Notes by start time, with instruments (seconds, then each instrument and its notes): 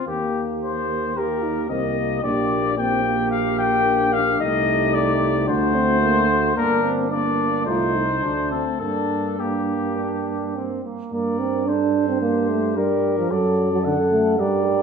0.07 tuba D#2, euphonium A#3, french horn A#3, flugelhorn G4, cornet G4
0.63 cornet C5
1.16 euphonium A#3, french horn G4, flugelhorn G4, cornet A#4
1.43 french horn D#4
1.70 tuba C2, euphonium A#3, french horn C4, flugelhorn G4, cornet D#5
1.96 french horn A#3
2.23 tuba A#1, euphonium A#3, french horn D4, flugelhorn G4, cornet D5
2.77 euphonium A#3, french horn C4, flugelhorn G4, cornet G5
3.05 french horn A#3
3.31 cornet F5
3.59 cornet G5
3.86 french horn D4
4.13 french horn D4, cornet F5
4.40 tuba C2, euphonium A3, french horn D#4, flugelhorn G4, cornet D#5
4.94 cornet D5
5.47 tuba D2, euphonium A3, french horn D4, flugelhorn F#4, cornet C5
5.75 french horn C4
6.02 french horn A#3
6.29 french horn A3
6.56 tuba G1, french horn A#3, euphonium A#3, flugelhorn D4, cornet A#4
6.83 french horn C4
7.11 french horn A#3, euphonium A#3, flugelhorn D4, cornet D5
7.66 tuba C2, euphonium A3, flugelhorn D#4, french horn F4, cornet C5
7.95 french horn D#4
8.22 tuba D2, euphonium A3, flugelhorn D4, french horn D4
8.51 french horn C4, cornet A4
8.80 tuba G2, euphonium A#3, french horn D4, flugelhorn D4, cornet A4
9.39 euphonium A#3, flugelhorn A#3, cornet G4
9.97 flugelhorn D4
10.55 flugelhorn C4
10.84 flugelhorn A#3
11.12 tuba G2, euphonium A#3, flugelhorn A#4, cornet D5
11.39 euphonium C4
11.67 euphonium D4, flugelhorn A4, cornet C5
12.09 euphonium C4
12.22 euphonium A#3, french horn D4, flugelhorn G4
12.49 euphonium A3
12.77 euphonium G3, flugelhorn G4, cornet A#4, french horn A#4
13.18 euphonium F3
13.31 tuba F#2, euphonium F#3, flugelhorn A4, french horn A4, cornet D5
13.72 euphonium F#3
13.85 euphonium D3, french horn A4, cornet F#5
14.12 euphonium A3
14.39 tuba G2, euphonium G3, french horn G4, flugelhorn A#4, cornet D5
14.66 french horn A#4